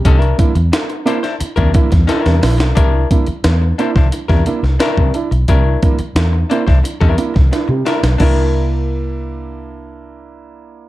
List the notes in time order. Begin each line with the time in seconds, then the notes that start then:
0.04 C2 C3 G3 C#4 D#4 A4, kick, closed hi-hat
0.18 D4 E4 A#4, closed hi-hat
0.38 A#3 D4 E4, kick, closed hi-hat
0.55 E2, muted hollow-body jazz guitar stroke, closed hi-hat
0.72 muted hollow-body jazz guitar stroke, snare, closed hi-hat
0.90 muted hollow-body jazz guitar stroke, closed hi-hat
1.06 A#3 D4 E4 C5, closed hi-hat
1.23 D4 E4 C5, snare, closed hi-hat
1.40 D4 E4, muted hollow-body jazz guitar stroke, muted fingered electric bass stroke, closed hi-hat
1.56 D#2 C3 G3 D4 E4 A#4, kick, closed hi-hat
1.74 A#3 D4 E4, muted hollow-body jazz guitar stroke, kick, closed hi-hat
1.91 E2, muted hollow-body jazz guitar stroke, kick, snare, closed hi-hat
2.07 C#4 D4 D#4 E4 A4, snare, closed hi-hat
2.20 D4 E4 A#4
2.25 E2 C3 G3, snare, closed hi-hat
2.42 A#1 D4 E4, muted hollow-body jazz guitar stroke, snare, open hi-hat
2.58 B1, muted hollow-body jazz guitar stroke, snare, closed hi-hat
2.75 C2 C3 G3 D4 E4 A#4, kick, closed hi-hat
2.94 D4 E4
3.11 A#3 D4 E4, kick, closed hi-hat
3.27 muted hollow-body jazz guitar stroke, muted fingered electric bass stroke, closed hi-hat
3.44 E2, muted hollow-body jazz guitar stroke, snare, closed hi-hat
3.62 muted hollow-body jazz guitar stroke
3.78 A#3 D4 E4 C5, closed hi-hat
3.96 C2 D4 E4 C5, kick, snare
4.12 D4 E4, muted hollow-body jazz guitar stroke, closed hi-hat
4.28 E2 C3 G3 D4 E4 A#4, kick, snare
4.46 A#3 D4 E4, muted hollow-body jazz guitar stroke, closed hi-hat
4.63 C2, muted hollow-body jazz guitar stroke, snare
4.79 D4 E4 A#4, snare, closed hi-hat
4.98 C3 G3, kick
5.14 D4 E4, muted hollow-body jazz guitar stroke, closed hi-hat
5.31 B1, muted hollow-body jazz guitar stroke, closed hi-hat
5.48 C2 C3 G3 D4 E4 A#4, kick, closed hi-hat
5.66 D4 E4
5.82 A#3 D4 E4, kick, closed hi-hat
5.99 muted hollow-body jazz guitar stroke, muted fingered electric bass stroke, closed hi-hat
6.15 E2, muted hollow-body jazz guitar stroke, snare, closed hi-hat
6.33 muted hollow-body jazz guitar stroke
6.50 A#3 D4 E4 C5, closed hi-hat
6.67 C2 D4 E4 C5, kick, snare
6.83 D4 E4, muted hollow-body jazz guitar stroke, closed hi-hat
7.01 E2 C3 G3 D4 E4 A#4, kick
7.17 A#3 D4 E4, muted hollow-body jazz guitar stroke, closed hi-hat
7.34 C2, muted hollow-body jazz guitar stroke, kick, snare
7.51 D4 E4, muted hollow-body jazz guitar stroke, snare, closed hi-hat
7.68 C3 G3, muted hollow-body jazz guitar stroke
7.85 D4 E4 A#4, snare, closed hi-hat
8.03 B1, muted hollow-body jazz guitar stroke, snare, closed hi-hat
8.18 C2 A#3 D4 E4, kick, crash
8.23 A#4